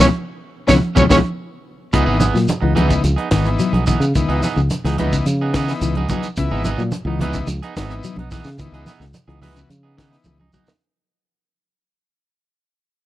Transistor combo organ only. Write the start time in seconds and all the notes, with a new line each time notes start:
0.67 G#3 B3 C#4
0.96 G#3 B3 C#4
1.09 G#3 B3 C#4
1.93 E3 B3 D#4
2.75 E3 B3 D#4
3.46 E3 B3 D#4
4.16 E3 B3 D#4
4.99 E3 B3 D#4
5.69 E3 B3 D#4
6.37 E3 B3 E4
7.21 E3 B3 D#4
7.89 E3 B3 D#4
8.59 E3 B3 D#4
9.41 E3 B3 F#4
10.10 E3 B3 D#4